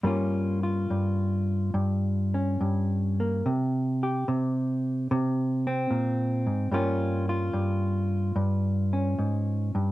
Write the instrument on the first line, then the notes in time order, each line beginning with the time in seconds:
hollow-body jazz guitar
0.03 G2 G3 A#3 C#4 F4
0.63 F4
0.90 G2
1.74 G2
2.34 C#4
2.61 G2
3.20 A#3
3.46 C3
4.03 G4
4.28 C3
5.11 C3
5.67 C4
5.91 A#2
6.47 G#2
6.72 G2 G3 A#3 C#4 F4
7.29 F4
7.53 G2
8.36 G2
8.93 C#4
9.19 G#2
9.75 G2